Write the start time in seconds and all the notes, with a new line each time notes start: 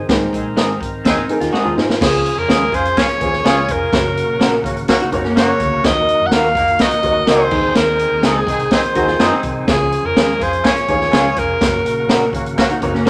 Already playing: D#3 C4
0.09 G#1 G#2 D#4 G#4 A#4 C5, kick, snare, closed hi-hat
0.33 A#1 C4 D#4 G#4, kick, closed hi-hat
0.57 G#1 G#3 C4 D#4 G#4, snare, closed hi-hat
0.80 G#1, kick, closed hi-hat
1.05 D#2 G#3 C4 D#4 G#4, kick, snare, closed hi-hat
1.16 G#2 C4 D#4
1.29 D#4 G#4 A#4, closed hi-hat
1.40 D#2 F4, snare, closed hi-hat
1.52 G#3 C4 D#4 F#4 G#4, snare
1.64 D#2 F4 G#4
1.77 G#2 D#4 G#4 C5, snare
1.90 snare
2.01 C#2 C#3 F3 C#4 F4 G#4 C#5, kick, snare, crash
2.26 closed hi-hat
2.37 F2 A#4
2.48 D#2 G#3 C#4 F4 G#4, snare, closed hi-hat
2.72 F2 C#4 F4 G#4 C5, kick, closed hi-hat
2.85 closed hi-hat
2.97 C#4 F4 G#4 C#5, kick, snare, closed hi-hat
3.09 muted fingered electric bass stroke, closed hi-hat
3.20 D#2 C#4 F4 G#4 C5, kick, closed hi-hat
3.28 C#5
3.33 snare
3.44 C#2 G#3 C#4 F4 G#4, snare, closed hi-hat
3.68 F1 A#4, kick, closed hi-hat
3.92 F#1 C#3 A#3 F#4 A#4 C#5, kick, snare, closed hi-hat
4.17 closed hi-hat
4.28 A#1
4.40 A#1 A#3 C#4 F#4 A#4, snare, closed hi-hat
4.64 G#1 A#3 C#4 F#4, kick, closed hi-hat
4.76 closed hi-hat
4.88 A#3 C#4 F#4 A#4, kick, snare, closed hi-hat
4.99 D#4 F#4, muted fingered electric bass stroke, closed hi-hat
5.12 F#1 A#3 C4 C#4 D#4 F#4 A#4 C#5, kick, closed hi-hat
5.24 A#3 C#4, snare
5.36 A#3 C#4 F#4 A#4 C#5, snare, closed hi-hat
5.60 D2, kick, closed hi-hat
5.84 D#2 D#3 F#4 A#4 D#5, kick, snare, closed hi-hat
6.09 closed hi-hat
6.20 F#2
6.26 F#5
6.31 D#2 A#3 D#4 F#4 A#4 F5, snare, closed hi-hat
6.55 F2 F#3 A#3 D#4, kick, closed hi-hat
6.68 closed hi-hat
6.79 A#3 D#4 F#4 D#5, kick, snare, closed hi-hat
6.91 muted fingered electric bass stroke, closed hi-hat
7.02 D#2 A#3 D#4 F#4 A#4 C#5, kick, closed hi-hat
7.10 D#5
7.27 C#2 A#3 C4 D#4 F#4 G#4 A#4 C5, snare, closed hi-hat
7.51 D#2 D#3 C4 D#4 G#4 A#4, kick, crash
7.59 C5
7.75 D#2 A#4, snare, closed hi-hat
7.99 closed hi-hat
8.11 D#2
8.23 C#2 G#3 C4 D#4 G#4, snare, closed hi-hat
8.46 C2 C4 D#4 G#4, kick, closed hi-hat
8.59 closed hi-hat
8.71 C4 D#4 G#4 C5, kick, snare, closed hi-hat
8.83 muted fingered electric bass stroke, closed hi-hat
8.95 D#2 C4 D#4 F#4 G#4 A#4 C5, kick, closed hi-hat
9.08 F4 G#4, snare
9.19 F#2 G#3 C4 D#4 F4 G#4, snare, closed hi-hat
9.32 C4 D#4
9.43 C2, kick, closed hi-hat
9.67 C#2 C#3 F3 C#4 F4 G#4 C#5, kick, snare, closed hi-hat
9.92 closed hi-hat
10.03 F2 A#4
10.15 D#2 G#3 C#4 F4 G#4, snare, closed hi-hat
10.39 F2 C#4 F4 G#4 C5, kick, closed hi-hat
10.53 closed hi-hat
10.63 C#4 F4 G#4, kick, snare, closed hi-hat
10.68 C#5
10.75 muted fingered electric bass stroke, closed hi-hat
10.87 D#2 C#4 D#4 F4 G#4 C#5, kick, closed hi-hat
10.94 F4
11.01 snare
11.12 C#2 G#3 C#4 F4 G#4, snare, closed hi-hat
11.36 F1 A#4, kick, closed hi-hat
11.61 F#1 C#3 A#3 F#4 A#4 C#5, kick, snare, closed hi-hat
11.84 A#1, closed hi-hat
12.08 A#1 A#3 C#4 F#4 A#4, snare, closed hi-hat
12.33 G#1 A#3 C#4 F#4, kick, closed hi-hat
12.46 closed hi-hat
12.57 A#3 C#4 F#4 A#4, kick, snare, closed hi-hat
12.69 D#4 F#4, muted fingered electric bass stroke, closed hi-hat
12.81 F#1 A#3 C4 C#4 D#4 F#4 A#4 C#5, kick, closed hi-hat
12.94 A#3 C#4, snare
13.05 A#3 C#4 F#4 A#4, snare, closed hi-hat